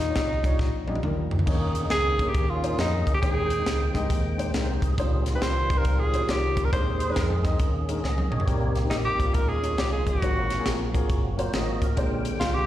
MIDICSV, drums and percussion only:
0, 0, Header, 1, 2, 480
1, 0, Start_track
1, 0, Key_signature, -4, "major"
1, 0, Tempo, 437637
1, 1617, Time_signature, 4, 2, 24, 8
1, 13891, End_track
2, 0, Start_track
2, 0, Title_t, "Drums"
2, 4, Note_on_c, 9, 38, 28
2, 114, Note_off_c, 9, 38, 0
2, 171, Note_on_c, 9, 38, 91
2, 171, Note_on_c, 9, 42, 81
2, 177, Note_on_c, 9, 36, 72
2, 281, Note_off_c, 9, 38, 0
2, 281, Note_off_c, 9, 42, 0
2, 286, Note_off_c, 9, 36, 0
2, 474, Note_on_c, 9, 38, 34
2, 483, Note_on_c, 9, 36, 82
2, 488, Note_on_c, 9, 42, 57
2, 583, Note_off_c, 9, 38, 0
2, 593, Note_off_c, 9, 36, 0
2, 598, Note_off_c, 9, 42, 0
2, 649, Note_on_c, 9, 36, 95
2, 656, Note_on_c, 9, 38, 47
2, 759, Note_off_c, 9, 36, 0
2, 766, Note_off_c, 9, 38, 0
2, 960, Note_on_c, 9, 48, 60
2, 1047, Note_off_c, 9, 48, 0
2, 1047, Note_on_c, 9, 48, 62
2, 1131, Note_on_c, 9, 47, 73
2, 1156, Note_off_c, 9, 48, 0
2, 1241, Note_off_c, 9, 47, 0
2, 1440, Note_on_c, 9, 43, 77
2, 1525, Note_off_c, 9, 43, 0
2, 1525, Note_on_c, 9, 43, 72
2, 1613, Note_on_c, 9, 36, 89
2, 1613, Note_on_c, 9, 49, 69
2, 1635, Note_off_c, 9, 43, 0
2, 1723, Note_off_c, 9, 36, 0
2, 1723, Note_off_c, 9, 49, 0
2, 1918, Note_on_c, 9, 42, 64
2, 2028, Note_off_c, 9, 42, 0
2, 2087, Note_on_c, 9, 38, 86
2, 2087, Note_on_c, 9, 42, 74
2, 2197, Note_off_c, 9, 38, 0
2, 2197, Note_off_c, 9, 42, 0
2, 2406, Note_on_c, 9, 36, 82
2, 2408, Note_on_c, 9, 42, 52
2, 2516, Note_off_c, 9, 36, 0
2, 2518, Note_off_c, 9, 42, 0
2, 2572, Note_on_c, 9, 42, 85
2, 2573, Note_on_c, 9, 36, 99
2, 2681, Note_off_c, 9, 42, 0
2, 2682, Note_off_c, 9, 36, 0
2, 2893, Note_on_c, 9, 42, 79
2, 3003, Note_off_c, 9, 42, 0
2, 3055, Note_on_c, 9, 42, 70
2, 3059, Note_on_c, 9, 38, 87
2, 3165, Note_off_c, 9, 42, 0
2, 3168, Note_off_c, 9, 38, 0
2, 3366, Note_on_c, 9, 36, 76
2, 3371, Note_on_c, 9, 42, 59
2, 3476, Note_off_c, 9, 36, 0
2, 3481, Note_off_c, 9, 42, 0
2, 3539, Note_on_c, 9, 36, 100
2, 3541, Note_on_c, 9, 42, 70
2, 3649, Note_off_c, 9, 36, 0
2, 3651, Note_off_c, 9, 42, 0
2, 3842, Note_on_c, 9, 42, 71
2, 3952, Note_off_c, 9, 42, 0
2, 4019, Note_on_c, 9, 38, 88
2, 4019, Note_on_c, 9, 42, 78
2, 4129, Note_off_c, 9, 38, 0
2, 4129, Note_off_c, 9, 42, 0
2, 4323, Note_on_c, 9, 38, 34
2, 4331, Note_on_c, 9, 36, 86
2, 4338, Note_on_c, 9, 42, 58
2, 4433, Note_off_c, 9, 38, 0
2, 4440, Note_off_c, 9, 36, 0
2, 4448, Note_off_c, 9, 42, 0
2, 4497, Note_on_c, 9, 36, 91
2, 4500, Note_on_c, 9, 42, 84
2, 4607, Note_off_c, 9, 36, 0
2, 4610, Note_off_c, 9, 42, 0
2, 4818, Note_on_c, 9, 42, 73
2, 4927, Note_off_c, 9, 42, 0
2, 4979, Note_on_c, 9, 42, 72
2, 4982, Note_on_c, 9, 38, 94
2, 5089, Note_off_c, 9, 42, 0
2, 5092, Note_off_c, 9, 38, 0
2, 5289, Note_on_c, 9, 36, 86
2, 5292, Note_on_c, 9, 42, 59
2, 5398, Note_off_c, 9, 36, 0
2, 5402, Note_off_c, 9, 42, 0
2, 5462, Note_on_c, 9, 36, 102
2, 5462, Note_on_c, 9, 42, 76
2, 5572, Note_off_c, 9, 36, 0
2, 5572, Note_off_c, 9, 42, 0
2, 5769, Note_on_c, 9, 42, 66
2, 5776, Note_on_c, 9, 38, 32
2, 5879, Note_off_c, 9, 42, 0
2, 5886, Note_off_c, 9, 38, 0
2, 5942, Note_on_c, 9, 38, 82
2, 5942, Note_on_c, 9, 42, 83
2, 6052, Note_off_c, 9, 38, 0
2, 6052, Note_off_c, 9, 42, 0
2, 6253, Note_on_c, 9, 36, 89
2, 6263, Note_on_c, 9, 42, 53
2, 6363, Note_off_c, 9, 36, 0
2, 6372, Note_off_c, 9, 42, 0
2, 6413, Note_on_c, 9, 42, 78
2, 6417, Note_on_c, 9, 36, 90
2, 6523, Note_off_c, 9, 42, 0
2, 6526, Note_off_c, 9, 36, 0
2, 6731, Note_on_c, 9, 42, 82
2, 6841, Note_off_c, 9, 42, 0
2, 6895, Note_on_c, 9, 42, 77
2, 6899, Note_on_c, 9, 38, 88
2, 7005, Note_off_c, 9, 42, 0
2, 7008, Note_off_c, 9, 38, 0
2, 7205, Note_on_c, 9, 42, 58
2, 7206, Note_on_c, 9, 36, 88
2, 7315, Note_off_c, 9, 36, 0
2, 7315, Note_off_c, 9, 42, 0
2, 7379, Note_on_c, 9, 36, 103
2, 7380, Note_on_c, 9, 42, 75
2, 7489, Note_off_c, 9, 36, 0
2, 7490, Note_off_c, 9, 42, 0
2, 7681, Note_on_c, 9, 42, 70
2, 7791, Note_off_c, 9, 42, 0
2, 7854, Note_on_c, 9, 38, 90
2, 7855, Note_on_c, 9, 42, 79
2, 7861, Note_on_c, 9, 36, 76
2, 7964, Note_off_c, 9, 38, 0
2, 7964, Note_off_c, 9, 42, 0
2, 7971, Note_off_c, 9, 36, 0
2, 8158, Note_on_c, 9, 38, 35
2, 8168, Note_on_c, 9, 36, 81
2, 8172, Note_on_c, 9, 42, 53
2, 8267, Note_off_c, 9, 38, 0
2, 8277, Note_off_c, 9, 36, 0
2, 8282, Note_off_c, 9, 42, 0
2, 8330, Note_on_c, 9, 42, 88
2, 8332, Note_on_c, 9, 36, 90
2, 8439, Note_off_c, 9, 42, 0
2, 8442, Note_off_c, 9, 36, 0
2, 8652, Note_on_c, 9, 42, 80
2, 8762, Note_off_c, 9, 42, 0
2, 8818, Note_on_c, 9, 38, 45
2, 8928, Note_off_c, 9, 38, 0
2, 8972, Note_on_c, 9, 48, 60
2, 9081, Note_off_c, 9, 48, 0
2, 9123, Note_on_c, 9, 45, 67
2, 9212, Note_on_c, 9, 43, 80
2, 9233, Note_off_c, 9, 45, 0
2, 9297, Note_on_c, 9, 36, 93
2, 9299, Note_on_c, 9, 42, 78
2, 9322, Note_off_c, 9, 43, 0
2, 9407, Note_off_c, 9, 36, 0
2, 9408, Note_off_c, 9, 42, 0
2, 9601, Note_on_c, 9, 42, 72
2, 9608, Note_on_c, 9, 38, 31
2, 9711, Note_off_c, 9, 42, 0
2, 9718, Note_off_c, 9, 38, 0
2, 9772, Note_on_c, 9, 38, 83
2, 9772, Note_on_c, 9, 42, 85
2, 9882, Note_off_c, 9, 38, 0
2, 9882, Note_off_c, 9, 42, 0
2, 10087, Note_on_c, 9, 36, 81
2, 10093, Note_on_c, 9, 42, 54
2, 10196, Note_off_c, 9, 36, 0
2, 10202, Note_off_c, 9, 42, 0
2, 10248, Note_on_c, 9, 42, 78
2, 10251, Note_on_c, 9, 36, 89
2, 10358, Note_off_c, 9, 42, 0
2, 10361, Note_off_c, 9, 36, 0
2, 10569, Note_on_c, 9, 42, 76
2, 10679, Note_off_c, 9, 42, 0
2, 10728, Note_on_c, 9, 42, 64
2, 10731, Note_on_c, 9, 38, 90
2, 10837, Note_off_c, 9, 42, 0
2, 10841, Note_off_c, 9, 38, 0
2, 11041, Note_on_c, 9, 36, 71
2, 11044, Note_on_c, 9, 42, 61
2, 11151, Note_off_c, 9, 36, 0
2, 11154, Note_off_c, 9, 42, 0
2, 11214, Note_on_c, 9, 36, 95
2, 11214, Note_on_c, 9, 42, 73
2, 11323, Note_off_c, 9, 42, 0
2, 11324, Note_off_c, 9, 36, 0
2, 11520, Note_on_c, 9, 42, 71
2, 11527, Note_on_c, 9, 38, 29
2, 11629, Note_off_c, 9, 42, 0
2, 11636, Note_off_c, 9, 38, 0
2, 11688, Note_on_c, 9, 38, 92
2, 11689, Note_on_c, 9, 42, 82
2, 11798, Note_off_c, 9, 38, 0
2, 11798, Note_off_c, 9, 42, 0
2, 12004, Note_on_c, 9, 36, 79
2, 12011, Note_on_c, 9, 42, 59
2, 12114, Note_off_c, 9, 36, 0
2, 12120, Note_off_c, 9, 42, 0
2, 12169, Note_on_c, 9, 42, 76
2, 12171, Note_on_c, 9, 36, 98
2, 12278, Note_off_c, 9, 42, 0
2, 12280, Note_off_c, 9, 36, 0
2, 12490, Note_on_c, 9, 42, 79
2, 12600, Note_off_c, 9, 42, 0
2, 12651, Note_on_c, 9, 42, 74
2, 12654, Note_on_c, 9, 38, 98
2, 12761, Note_off_c, 9, 42, 0
2, 12764, Note_off_c, 9, 38, 0
2, 12961, Note_on_c, 9, 36, 81
2, 12963, Note_on_c, 9, 42, 60
2, 13071, Note_off_c, 9, 36, 0
2, 13073, Note_off_c, 9, 42, 0
2, 13128, Note_on_c, 9, 42, 69
2, 13133, Note_on_c, 9, 36, 95
2, 13238, Note_off_c, 9, 42, 0
2, 13243, Note_off_c, 9, 36, 0
2, 13436, Note_on_c, 9, 42, 75
2, 13546, Note_off_c, 9, 42, 0
2, 13609, Note_on_c, 9, 38, 82
2, 13609, Note_on_c, 9, 42, 79
2, 13719, Note_off_c, 9, 38, 0
2, 13719, Note_off_c, 9, 42, 0
2, 13891, End_track
0, 0, End_of_file